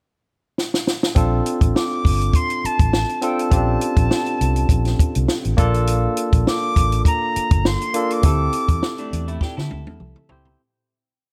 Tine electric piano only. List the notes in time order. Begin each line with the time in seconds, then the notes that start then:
1.15 C4 D4 F4 A4
3.21 C4 D4 F4 A4
3.51 C4 C#4 F4 G4
3.57 D4
5.57 A#3 D4 F4 A4
7.94 A#3 D4 F4 A4
8.23 C4 E4 G4 A4
10.30 C4 E4 G4 C5